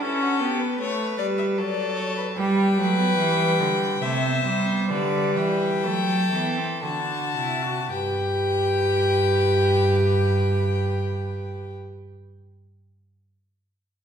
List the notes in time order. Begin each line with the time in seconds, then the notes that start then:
0.01 C#4 E4 A4
0.22 F#4
0.41 B3 G4
0.60 B4
0.80 A3 C#5
1.18 G3 D5
1.38 E5
1.56 F#3 A4 D5
1.97 C#5
2.17 B4
2.36 G3 B4 G5
2.78 F#3 A3
2.98 B3
3.18 E3 G3
3.60 D3
4.02 C3 A3 C5 E5
4.24 B3
4.46 G3 C4
4.69 B3
4.90 D3 G3 B4 D5
5.36 E3 G5
5.83 F#3 A3 A4
6.32 E3 B3
6.57 C4
6.82 D3 D4 F#4 A5
7.36 C3 E4
7.62 F#4
7.91 G2 G4 B4 G5